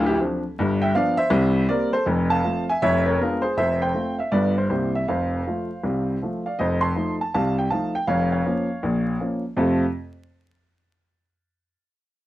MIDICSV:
0, 0, Header, 1, 2, 480
1, 0, Start_track
1, 0, Key_signature, -1, "major"
1, 0, Tempo, 375235
1, 736, Time_signature, 4, 2, 24, 8
1, 15689, End_track
2, 0, Start_track
2, 0, Title_t, "Grand piano"
2, 0, Program_c, 0, 0
2, 0, Note_on_c, 0, 26, 99
2, 0, Note_on_c, 0, 38, 106
2, 82, Note_on_c, 0, 67, 96
2, 95, Note_on_c, 0, 64, 68
2, 170, Note_off_c, 0, 26, 0
2, 173, Note_off_c, 0, 38, 0
2, 229, Note_off_c, 0, 67, 0
2, 250, Note_off_c, 0, 64, 0
2, 262, Note_on_c, 0, 53, 51
2, 271, Note_on_c, 0, 60, 47
2, 276, Note_on_c, 0, 62, 56
2, 524, Note_off_c, 0, 53, 0
2, 530, Note_off_c, 0, 60, 0
2, 535, Note_off_c, 0, 62, 0
2, 753, Note_on_c, 0, 43, 100
2, 758, Note_on_c, 0, 31, 83
2, 1044, Note_on_c, 0, 79, 100
2, 1056, Note_on_c, 0, 76, 90
2, 1154, Note_off_c, 0, 43, 0
2, 1156, Note_off_c, 0, 31, 0
2, 1190, Note_off_c, 0, 79, 0
2, 1211, Note_off_c, 0, 76, 0
2, 1211, Note_on_c, 0, 53, 54
2, 1215, Note_on_c, 0, 59, 60
2, 1217, Note_on_c, 0, 77, 110
2, 1226, Note_on_c, 0, 74, 77
2, 1228, Note_on_c, 0, 62, 64
2, 1476, Note_off_c, 0, 53, 0
2, 1477, Note_off_c, 0, 77, 0
2, 1480, Note_off_c, 0, 59, 0
2, 1488, Note_off_c, 0, 62, 0
2, 1502, Note_on_c, 0, 76, 111
2, 1506, Note_off_c, 0, 74, 0
2, 1515, Note_on_c, 0, 72, 73
2, 1662, Note_on_c, 0, 48, 98
2, 1667, Note_on_c, 0, 36, 111
2, 2066, Note_off_c, 0, 76, 0
2, 2084, Note_off_c, 0, 48, 0
2, 2087, Note_off_c, 0, 36, 0
2, 2126, Note_off_c, 0, 72, 0
2, 2159, Note_on_c, 0, 74, 95
2, 2165, Note_on_c, 0, 58, 45
2, 2172, Note_on_c, 0, 55, 52
2, 2176, Note_on_c, 0, 60, 50
2, 2179, Note_on_c, 0, 70, 72
2, 2427, Note_off_c, 0, 74, 0
2, 2432, Note_off_c, 0, 58, 0
2, 2437, Note_off_c, 0, 55, 0
2, 2440, Note_off_c, 0, 60, 0
2, 2463, Note_off_c, 0, 70, 0
2, 2468, Note_on_c, 0, 72, 101
2, 2486, Note_on_c, 0, 69, 64
2, 2621, Note_off_c, 0, 72, 0
2, 2634, Note_on_c, 0, 41, 84
2, 2643, Note_on_c, 0, 29, 91
2, 2645, Note_off_c, 0, 69, 0
2, 2944, Note_on_c, 0, 81, 108
2, 2964, Note_on_c, 0, 77, 74
2, 3051, Note_off_c, 0, 41, 0
2, 3057, Note_off_c, 0, 29, 0
2, 3122, Note_on_c, 0, 57, 47
2, 3124, Note_on_c, 0, 53, 55
2, 3136, Note_on_c, 0, 60, 52
2, 3360, Note_off_c, 0, 81, 0
2, 3390, Note_off_c, 0, 57, 0
2, 3391, Note_off_c, 0, 53, 0
2, 3400, Note_off_c, 0, 60, 0
2, 3410, Note_off_c, 0, 77, 0
2, 3447, Note_on_c, 0, 80, 94
2, 3460, Note_on_c, 0, 76, 73
2, 3591, Note_off_c, 0, 76, 0
2, 3592, Note_off_c, 0, 80, 0
2, 3610, Note_on_c, 0, 76, 110
2, 3612, Note_on_c, 0, 41, 94
2, 3615, Note_on_c, 0, 29, 86
2, 3619, Note_on_c, 0, 73, 96
2, 3873, Note_off_c, 0, 76, 0
2, 3899, Note_off_c, 0, 73, 0
2, 3919, Note_on_c, 0, 73, 84
2, 3936, Note_on_c, 0, 70, 74
2, 4022, Note_off_c, 0, 41, 0
2, 4023, Note_off_c, 0, 29, 0
2, 4067, Note_off_c, 0, 73, 0
2, 4091, Note_off_c, 0, 70, 0
2, 4105, Note_on_c, 0, 59, 55
2, 4110, Note_on_c, 0, 56, 50
2, 4110, Note_on_c, 0, 70, 81
2, 4111, Note_on_c, 0, 62, 48
2, 4119, Note_on_c, 0, 65, 68
2, 4365, Note_off_c, 0, 70, 0
2, 4367, Note_off_c, 0, 59, 0
2, 4370, Note_off_c, 0, 56, 0
2, 4371, Note_off_c, 0, 62, 0
2, 4372, Note_on_c, 0, 72, 89
2, 4393, Note_off_c, 0, 65, 0
2, 4395, Note_on_c, 0, 68, 63
2, 4532, Note_off_c, 0, 72, 0
2, 4559, Note_off_c, 0, 68, 0
2, 4568, Note_on_c, 0, 29, 75
2, 4570, Note_on_c, 0, 41, 76
2, 4574, Note_on_c, 0, 76, 101
2, 4586, Note_on_c, 0, 72, 80
2, 4836, Note_off_c, 0, 76, 0
2, 4866, Note_off_c, 0, 72, 0
2, 4884, Note_on_c, 0, 79, 94
2, 4890, Note_on_c, 0, 72, 68
2, 4979, Note_off_c, 0, 29, 0
2, 4980, Note_off_c, 0, 41, 0
2, 5043, Note_on_c, 0, 57, 47
2, 5050, Note_on_c, 0, 65, 46
2, 5052, Note_on_c, 0, 60, 49
2, 5291, Note_off_c, 0, 79, 0
2, 5310, Note_off_c, 0, 57, 0
2, 5315, Note_off_c, 0, 65, 0
2, 5317, Note_off_c, 0, 60, 0
2, 5333, Note_off_c, 0, 72, 0
2, 5354, Note_on_c, 0, 77, 64
2, 5367, Note_on_c, 0, 76, 67
2, 5379, Note_off_c, 0, 77, 0
2, 5506, Note_off_c, 0, 76, 0
2, 5522, Note_on_c, 0, 74, 91
2, 5523, Note_on_c, 0, 55, 54
2, 5528, Note_on_c, 0, 31, 73
2, 5528, Note_on_c, 0, 43, 83
2, 5544, Note_on_c, 0, 59, 50
2, 5544, Note_on_c, 0, 65, 50
2, 5544, Note_on_c, 0, 71, 68
2, 5790, Note_off_c, 0, 55, 0
2, 5800, Note_off_c, 0, 74, 0
2, 5805, Note_off_c, 0, 59, 0
2, 5805, Note_off_c, 0, 65, 0
2, 5838, Note_off_c, 0, 71, 0
2, 5855, Note_on_c, 0, 72, 69
2, 5939, Note_off_c, 0, 31, 0
2, 5939, Note_off_c, 0, 43, 0
2, 5986, Note_off_c, 0, 72, 0
2, 6006, Note_on_c, 0, 72, 71
2, 6009, Note_on_c, 0, 48, 60
2, 6009, Note_on_c, 0, 55, 35
2, 6014, Note_on_c, 0, 36, 59
2, 6016, Note_on_c, 0, 67, 48
2, 6018, Note_on_c, 0, 58, 37
2, 6029, Note_on_c, 0, 64, 35
2, 6275, Note_off_c, 0, 55, 0
2, 6281, Note_off_c, 0, 58, 0
2, 6282, Note_off_c, 0, 72, 0
2, 6289, Note_off_c, 0, 64, 0
2, 6313, Note_off_c, 0, 67, 0
2, 6337, Note_on_c, 0, 76, 78
2, 6420, Note_off_c, 0, 48, 0
2, 6422, Note_off_c, 0, 36, 0
2, 6472, Note_off_c, 0, 76, 0
2, 6501, Note_on_c, 0, 41, 74
2, 6501, Note_on_c, 0, 77, 75
2, 6504, Note_on_c, 0, 29, 56
2, 6521, Note_on_c, 0, 72, 58
2, 6906, Note_off_c, 0, 41, 0
2, 6908, Note_off_c, 0, 29, 0
2, 6995, Note_on_c, 0, 53, 38
2, 7004, Note_on_c, 0, 65, 45
2, 7007, Note_on_c, 0, 57, 34
2, 7253, Note_off_c, 0, 53, 0
2, 7260, Note_off_c, 0, 65, 0
2, 7262, Note_off_c, 0, 57, 0
2, 7464, Note_on_c, 0, 36, 61
2, 7469, Note_on_c, 0, 48, 67
2, 7723, Note_off_c, 0, 77, 0
2, 7868, Note_off_c, 0, 36, 0
2, 7871, Note_off_c, 0, 48, 0
2, 7897, Note_off_c, 0, 72, 0
2, 7960, Note_on_c, 0, 53, 37
2, 7964, Note_on_c, 0, 57, 35
2, 7974, Note_on_c, 0, 65, 39
2, 8217, Note_off_c, 0, 53, 0
2, 8220, Note_off_c, 0, 57, 0
2, 8227, Note_off_c, 0, 65, 0
2, 8263, Note_on_c, 0, 77, 67
2, 8267, Note_on_c, 0, 74, 51
2, 8401, Note_off_c, 0, 77, 0
2, 8416, Note_off_c, 0, 74, 0
2, 8427, Note_on_c, 0, 75, 80
2, 8435, Note_on_c, 0, 41, 81
2, 8440, Note_on_c, 0, 29, 66
2, 8448, Note_on_c, 0, 72, 67
2, 8683, Note_off_c, 0, 75, 0
2, 8710, Note_on_c, 0, 84, 89
2, 8718, Note_off_c, 0, 72, 0
2, 8728, Note_on_c, 0, 81, 56
2, 8834, Note_off_c, 0, 41, 0
2, 8837, Note_off_c, 0, 29, 0
2, 8899, Note_on_c, 0, 53, 42
2, 8907, Note_on_c, 0, 57, 40
2, 8913, Note_on_c, 0, 63, 45
2, 9135, Note_off_c, 0, 84, 0
2, 9162, Note_off_c, 0, 53, 0
2, 9168, Note_off_c, 0, 57, 0
2, 9172, Note_off_c, 0, 63, 0
2, 9184, Note_off_c, 0, 81, 0
2, 9225, Note_on_c, 0, 81, 76
2, 9357, Note_off_c, 0, 81, 0
2, 9394, Note_on_c, 0, 81, 91
2, 9395, Note_on_c, 0, 48, 75
2, 9400, Note_on_c, 0, 36, 74
2, 9408, Note_on_c, 0, 77, 69
2, 9658, Note_off_c, 0, 81, 0
2, 9691, Note_off_c, 0, 77, 0
2, 9702, Note_on_c, 0, 79, 84
2, 9795, Note_off_c, 0, 48, 0
2, 9798, Note_off_c, 0, 36, 0
2, 9835, Note_off_c, 0, 79, 0
2, 9856, Note_on_c, 0, 81, 82
2, 9870, Note_on_c, 0, 53, 38
2, 9871, Note_on_c, 0, 77, 57
2, 9874, Note_on_c, 0, 63, 44
2, 9878, Note_on_c, 0, 57, 42
2, 10128, Note_off_c, 0, 81, 0
2, 10130, Note_off_c, 0, 53, 0
2, 10133, Note_off_c, 0, 63, 0
2, 10136, Note_off_c, 0, 57, 0
2, 10161, Note_off_c, 0, 77, 0
2, 10171, Note_on_c, 0, 79, 89
2, 10309, Note_off_c, 0, 79, 0
2, 10328, Note_on_c, 0, 77, 100
2, 10330, Note_on_c, 0, 29, 75
2, 10331, Note_on_c, 0, 41, 74
2, 10338, Note_on_c, 0, 73, 72
2, 10592, Note_off_c, 0, 77, 0
2, 10622, Note_off_c, 0, 73, 0
2, 10643, Note_on_c, 0, 77, 76
2, 10650, Note_on_c, 0, 73, 62
2, 10741, Note_off_c, 0, 29, 0
2, 10741, Note_off_c, 0, 41, 0
2, 10822, Note_on_c, 0, 58, 53
2, 10824, Note_on_c, 0, 53, 53
2, 10829, Note_on_c, 0, 61, 57
2, 11084, Note_off_c, 0, 58, 0
2, 11086, Note_off_c, 0, 53, 0
2, 11089, Note_off_c, 0, 61, 0
2, 11294, Note_on_c, 0, 46, 78
2, 11298, Note_on_c, 0, 34, 79
2, 11607, Note_off_c, 0, 77, 0
2, 11703, Note_off_c, 0, 46, 0
2, 11705, Note_off_c, 0, 34, 0
2, 11729, Note_off_c, 0, 73, 0
2, 11770, Note_on_c, 0, 58, 46
2, 11781, Note_on_c, 0, 53, 40
2, 11787, Note_on_c, 0, 61, 39
2, 12036, Note_off_c, 0, 58, 0
2, 12044, Note_off_c, 0, 53, 0
2, 12048, Note_off_c, 0, 61, 0
2, 12236, Note_on_c, 0, 41, 86
2, 12239, Note_on_c, 0, 48, 75
2, 12240, Note_on_c, 0, 57, 71
2, 12246, Note_on_c, 0, 81, 55
2, 12247, Note_on_c, 0, 60, 70
2, 12249, Note_on_c, 0, 69, 79
2, 12252, Note_on_c, 0, 65, 69
2, 12563, Note_off_c, 0, 41, 0
2, 12565, Note_off_c, 0, 48, 0
2, 12565, Note_off_c, 0, 57, 0
2, 12568, Note_off_c, 0, 81, 0
2, 12569, Note_off_c, 0, 60, 0
2, 12570, Note_off_c, 0, 69, 0
2, 12572, Note_off_c, 0, 65, 0
2, 15689, End_track
0, 0, End_of_file